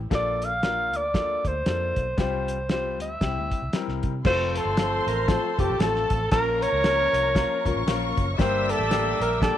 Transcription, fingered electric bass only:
0.11 A#1
0.93 D2
1.45 D2
1.66 F2
1.97 B1
2.18 C2
2.99 D2
3.21 C2
3.36 D2
3.62 C2
3.88 C2
4.04 C3
4.25 F1
4.65 G1
5.07 A1
5.59 F1
5.69 A#1
5.79 A1
6.11 A1
6.32 A#1
6.72 C#2
7.13 C2
7.65 C#2
7.76 A1
7.86 A#1
8.18 F#1
8.39 G1
8.79 A1
9.20 A#1

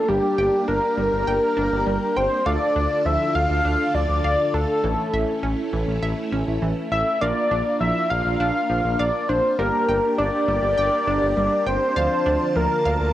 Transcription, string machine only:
Already playing: A#3 D4
0.08 G4
2.46 D3 F4 A4
4.83 A3 C#4 E4
7.21 A#3 D4 F4
9.59 A#3 G4
11.96 D3 F4 A5

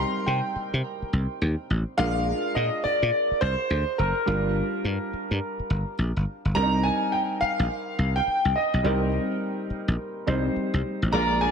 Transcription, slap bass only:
0.27 C3
0.56 muted slap bass stroke
0.74 C3
1.02 muted slap bass stroke
1.13 C2
1.42 D#2
1.70 A1
1.99 A#1
2.56 A#2
2.85 muted slap bass stroke
3.02 A#2
3.31 muted slap bass stroke
3.42 C2
3.70 D2
3.99 F#1
4.27 G1
4.85 G2
5.13 muted slap bass stroke
5.31 G2
5.59 muted slap bass stroke
5.70 G1
5.99 A#1
6.16 G1
6.45 G1
6.56 C2
7.42 muted slap bass stroke
7.59 A#1
7.99 C2
8.27 muted slap bass stroke
8.45 C2
8.74 B1
8.84 C2
9.70 muted slap bass stroke
9.88 A#1
10.27 C2
10.56 muted slap bass stroke
10.74 C2
11.02 A1
11.13 A#1

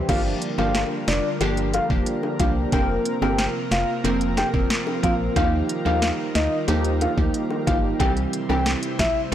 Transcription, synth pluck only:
0.09 F3 A#3 D4 G4
0.58 F3 A#3 D4 G4
1.41 F3 A#3 D4 G4
1.90 F3 A#3 D4 G4
2.39 F3 A#3 D4 G4
2.72 F3 A#3 C4 A#4
3.22 F3 A#3 C4 A#4
4.04 F3 A#3 C4 A#4
4.53 F3 A#3 C4 A#4
5.03 F3 A#3 C4 A#4
5.36 F3 A#3 D#4 G4
5.85 F3 A#3 D#4 G4
6.68 F3 A#3 D#4 G4
7.17 F3 A#3 D#4 G4
7.67 F3 A#3 D#4 G4
7.99 E3 G3 C4 G4
8.49 E3 G3 C4 G4

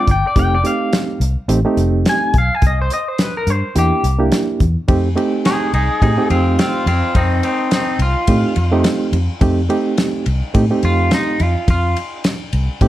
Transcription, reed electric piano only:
Already playing: G#3 C4 D4 F4
0.36 A3 C4 D#4 G4
0.63 A3 C4 D#4 G4
1.48 A3 C4 D#4 G4
1.65 A3 C4 D#4 G4
3.75 A#3 D4 E4 G4
4.19 A#3 D4 E4 G4
4.88 A3 C4 D#4 G4
5.16 A3 C4 D#4 G4
6.02 A3 C4 D#4 G4
6.17 A3 C4 D#4 G4
8.28 A3 C4 D#4 G4
8.72 A3 C4 D#4 G4
9.41 A3 C4 D#4 G4
9.69 A3 C4 D#4 G4
10.54 A3 C4 D#4 G4
10.71 A3 C4 D#4 G4
12.81 A3 C4 D#4 G4

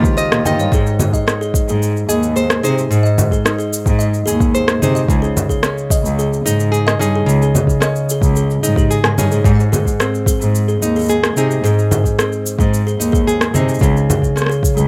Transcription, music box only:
0.17 C5
0.46 G5
0.60 C#5
0.74 G#4
1.14 D#5
1.41 G#4
1.69 G#4
2.09 D#5
2.36 G#4
2.63 G#4
3.03 D#5
3.32 G#4
3.58 G#4
3.99 D#5
4.26 G#4
4.55 G#4
4.95 D#5
5.22 G#4
5.49 G#4
5.91 D#5
6.19 G#4
6.46 G#4
6.87 D#5
7.15 G#4
7.43 G#4
7.83 D#5
8.11 G#4
8.37 G#4
8.63 G#4
8.78 G4
9.05 G#5
9.32 G#4
9.72 G#4
10.00 G#4
10.27 G#4
10.68 G#4
10.96 G#4
11.25 G#4
11.64 G#4
11.91 G#4
12.19 G#4
12.60 G#4
12.87 G#4
13.12 G#4
13.54 G#4
13.83 G#4
14.10 G#4
14.50 G#4
14.77 G#4

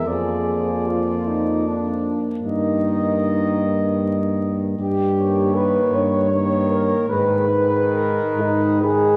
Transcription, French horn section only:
0.07 G#4
0.87 F4
1.27 D#4
1.66 D4
2.45 D#4
4.80 G4
5.54 B4
5.93 C#5
6.69 A#4
7.10 B4
7.93 A#4
8.39 D#4
8.82 G#4

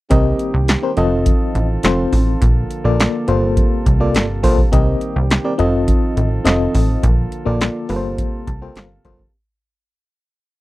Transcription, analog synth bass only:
0.11 C2
0.54 C2
0.97 F1
1.55 A1
1.84 F1
2.13 A1
2.42 A#1
2.85 A#1
3.28 G1
3.86 C2
4.15 G1
4.44 B1
4.73 C2
5.16 C2
5.59 F1
6.17 A1
6.45 F1
6.74 A1
7.03 A#1
7.46 A#1
7.90 G1
8.47 C2
8.76 G1
9.05 F#1

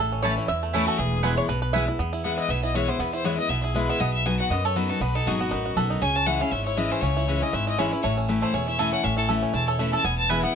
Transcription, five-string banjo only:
Already playing: E4
0.00 A4
0.12 C#4
0.23 C#5
0.38 E4
0.48 E5
0.63 A3
0.74 C#4
0.88 A4
0.99 E3
1.23 B4
1.37 C#5
1.49 B4
1.62 B4
1.73 E5
1.88 E4
1.99 B3
2.13 E4
2.24 B3
2.38 E4
2.49 B3
2.63 E4
2.75 E4
2.88 B3
2.99 B3
3.13 E4
3.25 B3
3.39 E4
3.50 B3
3.64 E4
3.76 E4
3.89 B3
4.00 B3
4.26 B3
4.40 F#4
4.51 B3
4.65 A4
4.76 F#4
4.90 B3
5.01 B3
5.15 D#4
5.27 F#4
5.41 B3
5.51 D#4
5.66 F#4
5.77 A4
5.90 D#4
6.02 C#4
6.16 C#4
6.27 E4
6.41 C#4
6.52 C#4
6.67 E4
6.78 E4
6.92 C#4
7.03 C#4
7.17 E4
7.28 E4
7.42 C#4
7.53 E4
7.67 E4
7.79 C#4
7.93 E4
8.04 A3
8.17 C#4
8.29 E4
8.42 A3
8.54 C#4
8.68 E4
8.79 A4
8.93 C#4
9.04 C#4
9.17 E4
9.29 A4
9.43 C#4
9.54 E4
9.68 A4
9.79 A3
9.93 A4
10.05 B3
10.30 E4
10.43 B3

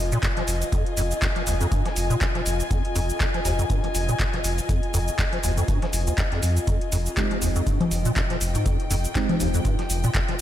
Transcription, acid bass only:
0.12 A#2
0.23 F2
0.37 F3
0.72 F2
0.97 F2
1.22 F2
1.36 F3
1.47 D#2
1.61 F2
1.72 G2
1.86 F3
2.10 A#2
2.21 F2
2.35 F3
2.71 F2
2.96 F2
3.20 F2
3.34 F3
3.45 D#2
3.59 F2
3.70 G2
3.84 F3
4.09 A#2
4.20 F2
4.34 F3
4.69 F2
4.94 F2
5.19 F2
5.33 F3
5.44 D#2
5.57 F2
5.68 G2
5.82 F3
6.07 D#2
6.18 F2
6.32 F2
6.68 F2
6.92 F2
7.17 F2
7.31 F3
7.42 D#2
7.56 F2
7.67 G2
7.81 F3
8.05 A#2
8.16 F2
8.30 F3
8.55 G#2
8.66 F2
8.91 F2
9.15 F2
9.29 F3
9.40 D#2
9.54 F2
9.65 G2
9.79 F3
10.04 A#2
10.15 F2
10.29 F3

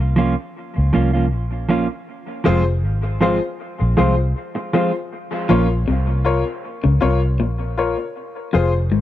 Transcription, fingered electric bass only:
Already playing: C2
0.78 C#2
0.96 C2
1.34 A#1
2.47 F1
2.85 G#1
3.81 A#1
3.99 C2
5.51 A#1
5.89 C2
6.85 C#2
7.03 C2
7.41 A#1
8.55 F1
8.93 G#1

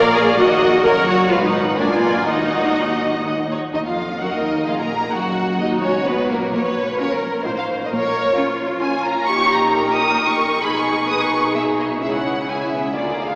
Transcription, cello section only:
Already playing: A#2
0.39 D#2
0.85 F#2
1.32 G#2
1.79 A#2
2.29 D#2
3.74 D#2
3.85 F2
4.20 F#2
4.32 D#2
4.68 F2
4.79 A#2
5.14 F#2
5.60 D#2
5.84 C#2
6.07 B2
6.30 A#2
6.54 A#2
7.45 A2
7.90 A#2
9.25 A#2
10.62 B2
12.01 C#3
12.96 D3

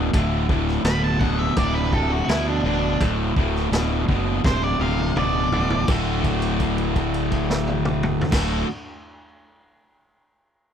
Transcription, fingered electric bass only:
0.13 D1
0.84 D1
1.57 D1
2.28 D2
2.63 D1
3.01 D1
3.36 D1
3.72 D1
4.08 F#1
4.44 D1
4.79 D1
5.16 D1
5.52 D1
5.88 D1
8.32 D1

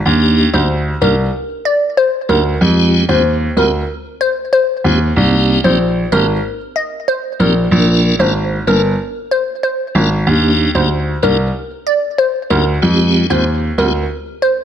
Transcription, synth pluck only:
0.54 C5
1.02 A#4
1.65 D5
1.97 C5
2.29 A#4
3.09 C5
3.57 A#4
4.21 C5
4.53 C5
5.64 C5
6.12 A#4
6.76 D#5
7.08 C5
7.40 A#4
8.20 C5
8.67 A#4
9.31 C5
9.63 C5
10.75 C5
11.23 A#4
11.87 D5
12.18 C5
12.50 A#4
13.30 C5
13.78 A#4
14.42 C5

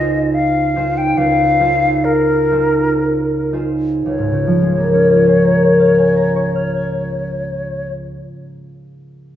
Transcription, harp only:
Already playing: C#2 D#4 F4 G#4 C5
0.76 D#4 F4 G#4 C5
1.17 C#2
1.60 D#4 F4 G#4 C5
2.51 D#4 F4 G#4 C5
3.53 D#4 F4 G#4 C5
4.06 C#2
4.18 G#2
4.32 C#3
4.47 F3
4.62 G#3
4.77 A#3
4.94 C#4
5.10 F4
5.27 G#4
5.44 A#4
5.61 C#5
5.80 F5
5.98 G#5
6.16 A#5
6.36 C#6
6.56 F6
6.77 G#6

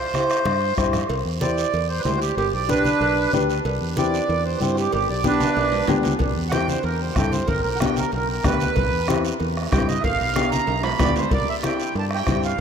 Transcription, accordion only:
Already playing: C5
1.41 D5
1.89 C5
1.99 B4 C5
2.17 F#4
2.21 G4
2.37 G4
2.54 D5
2.70 D4 B4
3.98 D5
4.45 C5
4.57 B4
4.61 C5
4.74 F#4
4.78 G4
4.93 G4
5.10 D5
5.26 D4 B4
6.49 F#5 G5
6.69 C5
6.85 A#4
7.02 C5
7.14 F#5
7.18 G5
7.32 C5
7.48 A#4
7.62 A#4
7.75 F#5
7.80 G5
7.98 A#4
8.13 A#4
8.30 A#4
8.46 B4
9.72 G5
9.88 D#5
10.01 E5 F5
10.51 A#5
10.84 B5
11.03 D5
11.18 C5
11.34 D5
11.49 E5
11.65 G5
11.99 A5
12.15 G5
12.45 F5

